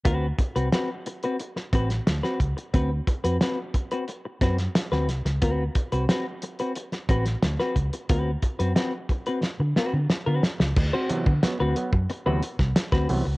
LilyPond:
<<
  \new Staff \with { instrumentName = "Clean electric guitar" } { \time 4/4 \key d \mixolydian \tempo 4 = 90 <c' fis' b'>16 r8 <c' fis' b'>16 <c' fis' b'>16 r8 <c' fis' b'>16 r8 <c' fis' b'>16 r8 <c' fis' b'>16 r8 | <c' fis' b'>16 r8 <c' fis' b'>16 <c' fis' b'>16 r8 <c' fis' b'>16 r8 <c' fis' b'>16 r8 <c' fis' b'>16 r8 | <c' fis' b'>16 r8 <c' fis' b'>16 <c' fis' b'>16 r8 <c' fis' b'>16 r8 <c' fis' b'>16 r8 <c' fis' b'>16 r8 | <c' fis' b'>16 r8 <c' fis' b'>16 <c' fis' b'>16 r8 <c' fis' b'>16 r8 <c' fis' b'>16 r8 <c' fis' b'>16 r8 |
r16 <c' fis' c''>16 r8. <c' fis' b'>16 r8. <c' fis' b'>16 r8. <c' fis' b'>16 r8 | }
  \new Staff \with { instrumentName = "Clav" } { \clef bass \time 4/4 \key d \mixolydian r1 | r1 | r1 | r1 |
r8 <c e fis b>16 <fis b>16 <fis b>16 r16 <fis b>16 r8 <c e fis b>16 r4 <c e fis b>16 r16 | }
  \new Staff \with { instrumentName = "Fingered electric bass" } { \clef bass \time 4/4 \key d \mixolydian d,8 r16 c,16 r4. a,,8 d,16 r16 cis,16 r16 | d,8 r16 f,16 r4. fis,8 r16 d,16 c,16 cis,16 | d,8 r16 c,16 r4. a,,8 d,16 r16 cis,16 r16 | d,8 r16 fis,16 r4 r16 d16 r16 d16 r16 d16 r16 cis,16 |
d,16 r8 d16 r16 d,16 r16 fis,16 r16 d,16 r16 c,16 r16 d,16 c,16 cis,16 | }
  \new DrumStaff \with { instrumentName = "Drums" } \drummode { \time 4/4 <hh bd>8 <hh bd>16 hh16 <hh sn>8 hh16 hh16 hh16 sn16 <hh bd>16 <hh sn>16 <hh sn>16 sn16 <hh bd>16 hh16 | <hh bd>8 <hh bd>16 hh16 <hh sn>8 <hh bd>16 hh16 hh8 <hh bd sn>16 <hh sn>16 <hh sn>16 sn16 <hh sn>16 <hh sn>16 | <hh bd>8 <hh bd>16 hh16 <hh sn>8 hh16 hh16 hh16 <hh sn>16 <hh bd>16 <hh sn>16 <hh sn>16 sn16 <hh bd>16 hh16 | <hh bd>8 <hh bd>16 hh16 <hh sn>8 <hh bd>16 hh16 sn8 sn8 sn8 sn16 sn16 |
<cymc bd>8 hh16 bd16 <hh sn>8 hh16 bd16 hh8 hh16 <bd sn>16 <hh sn>16 <bd sn>16 hho8 | }
>>